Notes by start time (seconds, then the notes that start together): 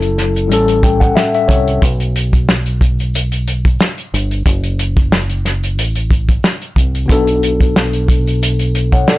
Already playing: F#1 F#3 C#4 E4 A4
0.02 closed hi-hat, shaker
0.18 snare, closed hi-hat
0.35 closed hi-hat, shaker
0.48 A1 A2 G3 C#4, shaker
0.52 A4, closed hi-hat
0.68 closed hi-hat, shaker
0.83 G5, kick, closed hi-hat, shaker
1.00 F#5, kick, closed hi-hat, shaker
1.16 E5, snare, shaker
1.34 E5, closed hi-hat, shaker
1.48 C2 C#5, kick, closed hi-hat
1.67 closed hi-hat, shaker
1.82 B1, kick, closed hi-hat, shaker
2.00 closed hi-hat, shaker
2.15 closed hi-hat, shaker
2.33 kick, closed hi-hat, shaker
2.49 snare, shaker
2.65 closed hi-hat, shaker
2.81 kick, closed hi-hat
2.99 closed hi-hat, shaker
3.14 closed hi-hat, shaker
3.32 closed hi-hat, shaker
3.47 closed hi-hat, shaker
3.65 kick, closed hi-hat, shaker
3.79 snare, shaker
3.98 closed hi-hat, shaker
4.14 G1, closed hi-hat
4.30 closed hi-hat, shaker
4.46 F#1, kick, closed hi-hat, shaker
4.64 closed hi-hat, shaker
4.78 closed hi-hat, shaker
4.97 kick, closed hi-hat, shaker
5.12 snare, shaker
5.29 closed hi-hat, shaker
5.45 snare, closed hi-hat
5.63 closed hi-hat, shaker
5.78 A1, closed hi-hat, shaker
5.96 closed hi-hat, shaker
6.10 kick, closed hi-hat, shaker
6.29 kick, closed hi-hat, shaker
6.43 snare, shaker
6.62 closed hi-hat, shaker
6.76 C2, kick, closed hi-hat
6.95 closed hi-hat, shaker
7.06 B1 B2 B3, kick, shaker
7.10 D4 A4, closed hi-hat
7.27 closed hi-hat, shaker
7.42 closed hi-hat, shaker
7.61 kick, closed hi-hat, shaker
7.76 snare, shaker
7.93 closed hi-hat, shaker
8.08 kick, closed hi-hat
8.27 closed hi-hat, shaker
8.42 closed hi-hat, shaker
8.59 closed hi-hat, shaker
8.74 closed hi-hat, shaker
8.92 C#5 F#5, kick, closed hi-hat, shaker
9.07 A4 D5, snare, shaker